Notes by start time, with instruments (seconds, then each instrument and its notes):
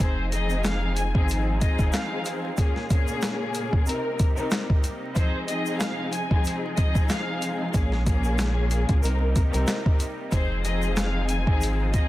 0.00 analog synth bass F1, analog synth pad D#3 G#3 C4 F4, string section F3 C4 D#4 G#4, violin section C5, kick, closed hi-hat, shaker
0.32 string section F3 C4 D#4 G#4, violin section D#5, closed hi-hat, shaker
0.50 shaker
0.64 violin section F5, snare, clap, closed hi-hat, shaker
0.96 violin section G#5, closed hi-hat, shaker
1.14 analog synth bass G#1, string section F3 C4 D#4 G#4, kick
1.29 closed hi-hat, shaker
1.60 string section F3 C4 D#4 G#4, violin section D#5, kick, closed hi-hat, shaker
1.79 analog synth bass F1, kick, shaker
1.93 violin section F5, snare, clap, closed hi-hat, shaker
2.25 closed hi-hat, shaker
2.57 string section A#2 A#3 C#4 G#4, analog synth pad C#3 A#3, kick, closed hi-hat, shaker
2.76 snare
2.90 string section A#2 A#3 C#4 G#4, kick, closed hi-hat, shaker
3.08 shaker
3.22 snare, clap, closed hi-hat, shaker
3.54 closed hi-hat, shaker
3.73 kick
3.86 string section C3 C4 D#4 A#4, analog synth pad C3 G3 D#4, closed hi-hat, shaker
4.19 kick, closed hi-hat, shaker
4.35 string section C3 C4 D#4 A#4, shaker
4.51 snare, clap, closed hi-hat, shaker
4.70 kick
4.84 closed hi-hat, shaker
5.15 analog synth pad F3 G#3, string section F3 C4 D#4 G#4, violin section C5, kick, closed hi-hat, shaker
5.48 string section F3 C4 D#4 G#4, violin section D#5, closed hi-hat, shaker
5.66 shaker
5.79 violin section F5, snare, clap, closed hi-hat, shaker
6.13 violin section G#5, closed hi-hat, shaker
6.30 string section F3 C4 D#4 G#4, kick
6.45 closed hi-hat, shaker
6.76 string section F3 C4 D#4 G#4, violin section D#5, kick, closed hi-hat, shaker
6.95 kick, shaker
7.09 violin section F5, snare, clap, closed hi-hat, shaker
7.42 closed hi-hat, shaker
7.73 analog synth bass A#1, string section A#2 A#3 C#4 G#4, analog synth pad C#3 A#3 F4, kick, closed hi-hat, shaker
7.92 snare
8.06 string section A#2 A#3 C#4 G#4, kick, closed hi-hat, shaker
8.24 shaker
8.38 snare, clap, closed hi-hat, shaker
8.71 closed hi-hat, shaker
8.89 analog synth bass C#2, kick, closed hi-hat
9.02 analog synth bass C2, string section C3 C4 D#4 A#4, analog synth pad C3 G3 D#4, closed hi-hat, shaker
9.36 kick, closed hi-hat, shaker
9.52 analog synth bass C2, string section C3 C4 D#4 A#4, closed hi-hat, shaker
9.67 snare, clap, closed hi-hat, shaker
9.86 kick
10.00 closed hi-hat, shaker
10.31 analog synth bass F1, analog synth pad D#3 G#3 C4 F4, string section F3 C4 D#4 G#4, violin section C5, kick, closed hi-hat, shaker
10.64 string section F3 C4 D#4 G#4, violin section D#5, closed hi-hat, shaker
10.82 shaker
10.97 violin section F5, snare, clap, closed hi-hat, shaker
11.28 violin section G#5, closed hi-hat, shaker
11.47 analog synth bass G#1, string section F3 C4 D#4 G#4, kick
11.61 closed hi-hat, shaker
11.93 string section F3 C4 D#4 G#4, violin section D#5, kick, closed hi-hat, shaker